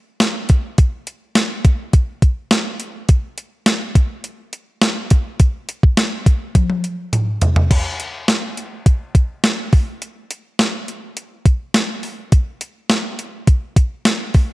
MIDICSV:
0, 0, Header, 1, 2, 480
1, 0, Start_track
1, 0, Tempo, 576923
1, 653, Time_signature, 4, 2, 24, 8
1, 12089, End_track
2, 0, Start_track
2, 0, Title_t, "Drums"
2, 167, Note_on_c, 9, 38, 107
2, 169, Note_on_c, 9, 42, 73
2, 250, Note_off_c, 9, 38, 0
2, 252, Note_off_c, 9, 42, 0
2, 406, Note_on_c, 9, 42, 72
2, 414, Note_on_c, 9, 36, 83
2, 489, Note_off_c, 9, 42, 0
2, 497, Note_off_c, 9, 36, 0
2, 649, Note_on_c, 9, 42, 95
2, 652, Note_on_c, 9, 36, 102
2, 732, Note_off_c, 9, 42, 0
2, 735, Note_off_c, 9, 36, 0
2, 889, Note_on_c, 9, 42, 79
2, 973, Note_off_c, 9, 42, 0
2, 1126, Note_on_c, 9, 38, 107
2, 1127, Note_on_c, 9, 42, 79
2, 1209, Note_off_c, 9, 38, 0
2, 1210, Note_off_c, 9, 42, 0
2, 1370, Note_on_c, 9, 36, 93
2, 1370, Note_on_c, 9, 42, 63
2, 1453, Note_off_c, 9, 36, 0
2, 1453, Note_off_c, 9, 42, 0
2, 1608, Note_on_c, 9, 42, 77
2, 1610, Note_on_c, 9, 36, 93
2, 1692, Note_off_c, 9, 42, 0
2, 1693, Note_off_c, 9, 36, 0
2, 1849, Note_on_c, 9, 36, 75
2, 1850, Note_on_c, 9, 42, 60
2, 1932, Note_off_c, 9, 36, 0
2, 1933, Note_off_c, 9, 42, 0
2, 2087, Note_on_c, 9, 38, 110
2, 2089, Note_on_c, 9, 42, 79
2, 2171, Note_off_c, 9, 38, 0
2, 2172, Note_off_c, 9, 42, 0
2, 2327, Note_on_c, 9, 42, 73
2, 2410, Note_off_c, 9, 42, 0
2, 2568, Note_on_c, 9, 42, 98
2, 2571, Note_on_c, 9, 36, 102
2, 2651, Note_off_c, 9, 42, 0
2, 2654, Note_off_c, 9, 36, 0
2, 2809, Note_on_c, 9, 42, 78
2, 2892, Note_off_c, 9, 42, 0
2, 3046, Note_on_c, 9, 38, 105
2, 3046, Note_on_c, 9, 42, 78
2, 3129, Note_off_c, 9, 38, 0
2, 3129, Note_off_c, 9, 42, 0
2, 3290, Note_on_c, 9, 36, 91
2, 3290, Note_on_c, 9, 42, 65
2, 3373, Note_off_c, 9, 36, 0
2, 3374, Note_off_c, 9, 42, 0
2, 3527, Note_on_c, 9, 42, 74
2, 3611, Note_off_c, 9, 42, 0
2, 3768, Note_on_c, 9, 42, 63
2, 3851, Note_off_c, 9, 42, 0
2, 4006, Note_on_c, 9, 38, 116
2, 4008, Note_on_c, 9, 42, 78
2, 4089, Note_off_c, 9, 38, 0
2, 4091, Note_off_c, 9, 42, 0
2, 4247, Note_on_c, 9, 42, 73
2, 4253, Note_on_c, 9, 36, 90
2, 4330, Note_off_c, 9, 42, 0
2, 4336, Note_off_c, 9, 36, 0
2, 4489, Note_on_c, 9, 42, 90
2, 4491, Note_on_c, 9, 36, 97
2, 4573, Note_off_c, 9, 42, 0
2, 4574, Note_off_c, 9, 36, 0
2, 4731, Note_on_c, 9, 42, 76
2, 4815, Note_off_c, 9, 42, 0
2, 4853, Note_on_c, 9, 36, 84
2, 4936, Note_off_c, 9, 36, 0
2, 4969, Note_on_c, 9, 38, 105
2, 4970, Note_on_c, 9, 42, 80
2, 5053, Note_off_c, 9, 38, 0
2, 5053, Note_off_c, 9, 42, 0
2, 5211, Note_on_c, 9, 36, 92
2, 5212, Note_on_c, 9, 42, 64
2, 5294, Note_off_c, 9, 36, 0
2, 5296, Note_off_c, 9, 42, 0
2, 5450, Note_on_c, 9, 36, 91
2, 5450, Note_on_c, 9, 42, 77
2, 5451, Note_on_c, 9, 48, 55
2, 5533, Note_off_c, 9, 36, 0
2, 5533, Note_off_c, 9, 42, 0
2, 5534, Note_off_c, 9, 48, 0
2, 5571, Note_on_c, 9, 48, 50
2, 5654, Note_off_c, 9, 48, 0
2, 5690, Note_on_c, 9, 42, 64
2, 5774, Note_off_c, 9, 42, 0
2, 5931, Note_on_c, 9, 42, 76
2, 5931, Note_on_c, 9, 45, 81
2, 6014, Note_off_c, 9, 42, 0
2, 6014, Note_off_c, 9, 45, 0
2, 6169, Note_on_c, 9, 42, 73
2, 6171, Note_on_c, 9, 43, 86
2, 6252, Note_off_c, 9, 42, 0
2, 6255, Note_off_c, 9, 43, 0
2, 6291, Note_on_c, 9, 43, 85
2, 6375, Note_off_c, 9, 43, 0
2, 6412, Note_on_c, 9, 36, 101
2, 6412, Note_on_c, 9, 49, 89
2, 6413, Note_on_c, 9, 42, 89
2, 6495, Note_off_c, 9, 49, 0
2, 6496, Note_off_c, 9, 36, 0
2, 6496, Note_off_c, 9, 42, 0
2, 6653, Note_on_c, 9, 42, 77
2, 6736, Note_off_c, 9, 42, 0
2, 6890, Note_on_c, 9, 38, 107
2, 6890, Note_on_c, 9, 42, 83
2, 6973, Note_off_c, 9, 38, 0
2, 6974, Note_off_c, 9, 42, 0
2, 7133, Note_on_c, 9, 42, 65
2, 7217, Note_off_c, 9, 42, 0
2, 7372, Note_on_c, 9, 36, 92
2, 7372, Note_on_c, 9, 42, 75
2, 7455, Note_off_c, 9, 36, 0
2, 7455, Note_off_c, 9, 42, 0
2, 7611, Note_on_c, 9, 36, 81
2, 7613, Note_on_c, 9, 42, 62
2, 7695, Note_off_c, 9, 36, 0
2, 7696, Note_off_c, 9, 42, 0
2, 7852, Note_on_c, 9, 38, 112
2, 7853, Note_on_c, 9, 42, 78
2, 7935, Note_off_c, 9, 38, 0
2, 7936, Note_off_c, 9, 42, 0
2, 8092, Note_on_c, 9, 46, 75
2, 8094, Note_on_c, 9, 36, 106
2, 8175, Note_off_c, 9, 46, 0
2, 8177, Note_off_c, 9, 36, 0
2, 8335, Note_on_c, 9, 42, 91
2, 8418, Note_off_c, 9, 42, 0
2, 8574, Note_on_c, 9, 42, 79
2, 8658, Note_off_c, 9, 42, 0
2, 8812, Note_on_c, 9, 38, 112
2, 8812, Note_on_c, 9, 42, 83
2, 8895, Note_off_c, 9, 38, 0
2, 8895, Note_off_c, 9, 42, 0
2, 9054, Note_on_c, 9, 42, 63
2, 9138, Note_off_c, 9, 42, 0
2, 9291, Note_on_c, 9, 42, 75
2, 9374, Note_off_c, 9, 42, 0
2, 9531, Note_on_c, 9, 36, 75
2, 9531, Note_on_c, 9, 42, 62
2, 9614, Note_off_c, 9, 36, 0
2, 9615, Note_off_c, 9, 42, 0
2, 9770, Note_on_c, 9, 38, 118
2, 9772, Note_on_c, 9, 42, 81
2, 9854, Note_off_c, 9, 38, 0
2, 9855, Note_off_c, 9, 42, 0
2, 10009, Note_on_c, 9, 46, 70
2, 10093, Note_off_c, 9, 46, 0
2, 10251, Note_on_c, 9, 42, 97
2, 10253, Note_on_c, 9, 36, 107
2, 10334, Note_off_c, 9, 42, 0
2, 10336, Note_off_c, 9, 36, 0
2, 10491, Note_on_c, 9, 42, 80
2, 10574, Note_off_c, 9, 42, 0
2, 10729, Note_on_c, 9, 38, 110
2, 10729, Note_on_c, 9, 42, 86
2, 10812, Note_off_c, 9, 38, 0
2, 10813, Note_off_c, 9, 42, 0
2, 10973, Note_on_c, 9, 42, 66
2, 11056, Note_off_c, 9, 42, 0
2, 11210, Note_on_c, 9, 42, 78
2, 11211, Note_on_c, 9, 36, 95
2, 11294, Note_off_c, 9, 36, 0
2, 11294, Note_off_c, 9, 42, 0
2, 11451, Note_on_c, 9, 36, 78
2, 11453, Note_on_c, 9, 42, 66
2, 11535, Note_off_c, 9, 36, 0
2, 11536, Note_off_c, 9, 42, 0
2, 11692, Note_on_c, 9, 38, 108
2, 11693, Note_on_c, 9, 42, 79
2, 11775, Note_off_c, 9, 38, 0
2, 11776, Note_off_c, 9, 42, 0
2, 11932, Note_on_c, 9, 46, 74
2, 11936, Note_on_c, 9, 36, 88
2, 12015, Note_off_c, 9, 46, 0
2, 12019, Note_off_c, 9, 36, 0
2, 12089, End_track
0, 0, End_of_file